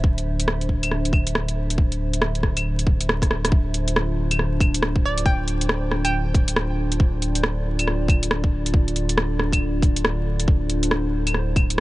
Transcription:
Already playing: D1 D3 D4 C5 E5
0.04 kick
0.18 closed hi-hat
0.40 closed hi-hat
0.48 cross-stick
0.61 closed hi-hat
0.69 kick
0.83 closed hi-hat, claves
0.91 cross-stick
1.05 closed hi-hat
1.13 kick, claves
1.27 closed hi-hat
1.35 cross-stick
1.48 closed hi-hat
1.70 closed hi-hat
1.78 kick
1.92 closed hi-hat
2.13 closed hi-hat
2.22 cross-stick
2.35 closed hi-hat
2.43 kick, cross-stick
2.57 closed hi-hat, claves
2.79 closed hi-hat
2.87 kick
3.00 closed hi-hat
3.09 cross-stick
3.22 kick, cross-stick, closed hi-hat
3.31 cross-stick
3.45 cross-stick, closed hi-hat
3.52 D1 D3 D4 F4 C5, kick
3.74 closed hi-hat
3.88 closed hi-hat
3.96 cross-stick
4.31 closed hi-hat, claves
4.39 cross-stick
4.60 kick, closed hi-hat, claves
4.74 closed hi-hat
4.82 cross-stick
4.96 kick
5.05 D5
5.18 closed hi-hat
5.26 G5, kick
5.48 closed hi-hat
5.61 closed hi-hat
5.69 cross-stick
5.91 cross-stick
6.05 G5, closed hi-hat, claves
6.34 kick, closed hi-hat
6.48 closed hi-hat
6.56 cross-stick
6.92 closed hi-hat
7.00 D5, kick
7.22 closed hi-hat
7.35 closed hi-hat
7.44 cross-stick
7.79 closed hi-hat, claves
7.88 cross-stick
8.08 kick, closed hi-hat, claves
8.23 closed hi-hat
8.31 cross-stick
8.44 kick
8.66 closed hi-hat
8.74 kick
8.88 closed hi-hat
8.96 closed hi-hat
9.09 closed hi-hat
9.18 cross-stick
9.39 cross-stick
9.53 kick, closed hi-hat, claves
9.82 kick, closed hi-hat
9.96 closed hi-hat
10.05 cross-stick
10.40 closed hi-hat
10.48 D1 E4 C5, kick
10.70 closed hi-hat
10.83 closed hi-hat
10.91 cross-stick
11.27 closed hi-hat, claves
11.34 cross-stick
11.56 kick, closed hi-hat, claves
11.70 closed hi-hat

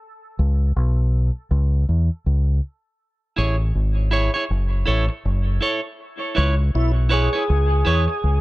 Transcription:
0.39 C#2
0.76 B1
1.51 C#2
1.89 E2
2.26 C#2
3.36 A1 E4 G#4 C#5
3.75 G#1
4.11 E4 G#4 C#5
4.34 E4 G#4 C#5
4.50 F#1
4.86 A1 E4 A4 C#5
5.10 muted clean electric guitar stroke
5.25 F#1
5.61 E4 A4 C#5
6.35 C#2 E4 B4 C#5
6.75 B1 E4
7.09 E4 G#4 B4 C#5
7.33 E4 B4 C#5
7.50 C#2
7.85 E2 E4 B4 C#5
8.08 muted clean electric guitar stroke
8.24 C#2

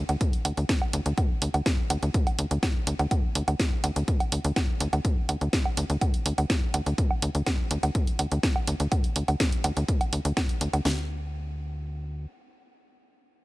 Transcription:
0.09 D2, closed hi-hat, low woodblock
0.21 kick, closed hi-hat
0.33 closed hi-hat
0.45 D2, open hi-hat, low woodblock
0.57 D2, closed hi-hat
0.69 kick, snare, closed hi-hat
0.82 low woodblock
0.93 D2, open hi-hat
1.06 D2, closed hi-hat
1.18 kick, closed hi-hat, low woodblock
1.42 D2, open hi-hat
1.54 D2, closed hi-hat, low woodblock
1.66 kick, snare, closed hi-hat
1.90 D2, open hi-hat, low woodblock
2.03 D2, closed hi-hat
2.14 kick, closed hi-hat
2.27 closed hi-hat, low woodblock
2.39 D2, open hi-hat
2.51 D2, closed hi-hat
2.63 kick, snare, closed hi-hat, low woodblock
2.87 D2, open hi-hat
2.99 D2, closed hi-hat, low woodblock
3.11 kick, closed hi-hat, low woodblock
3.35 D2, open hi-hat
3.48 D2, closed hi-hat, low woodblock
3.60 kick, snare, closed hi-hat
3.84 D2, open hi-hat, low woodblock
3.96 D2, closed hi-hat
4.08 kick, closed hi-hat
4.20 closed hi-hat, low woodblock
4.32 D2, open hi-hat
4.45 D2, closed hi-hat
4.56 kick, snare, closed hi-hat, low woodblock
4.80 D2, open hi-hat
4.93 D2, closed hi-hat, low woodblock
5.05 kick, closed hi-hat
5.29 D2, open hi-hat, low woodblock
5.41 D2, closed hi-hat
5.53 kick, snare, closed hi-hat
5.65 low woodblock
5.77 D2, open hi-hat
5.90 D2, closed hi-hat
6.01 kick, closed hi-hat, low woodblock
6.14 closed hi-hat
6.26 D2, open hi-hat
6.38 D2, closed hi-hat, low woodblock
6.50 kick, snare, closed hi-hat
6.74 D2, open hi-hat, low woodblock
6.86 D2, closed hi-hat
6.98 kick, closed hi-hat
7.11 low woodblock
7.22 D2, open hi-hat
7.35 D2, closed hi-hat
7.46 kick, snare, closed hi-hat, low woodblock
7.71 D2, open hi-hat
7.83 D2, closed hi-hat, low woodblock
7.95 kick, closed hi-hat
8.07 closed hi-hat
8.19 D2, open hi-hat, low woodblock
8.32 D2, closed hi-hat
8.43 kick, snare, closed hi-hat
8.56 low woodblock
8.67 D2, open hi-hat
8.80 D2, closed hi-hat
8.92 kick, closed hi-hat, low woodblock
9.04 closed hi-hat
9.16 D2, open hi-hat
9.28 D2, closed hi-hat, low woodblock
9.40 kick, snare, closed hi-hat
9.52 closed hi-hat
9.64 D2, open hi-hat, low woodblock
9.77 D2, closed hi-hat
9.88 kick, closed hi-hat
10.01 closed hi-hat, low woodblock
10.13 D2, open hi-hat
10.25 D2, closed hi-hat
10.37 kick, snare, closed hi-hat, low woodblock
10.49 closed hi-hat
10.61 D2, open hi-hat
10.73 D2, closed hi-hat, low woodblock
10.85 D2, snare

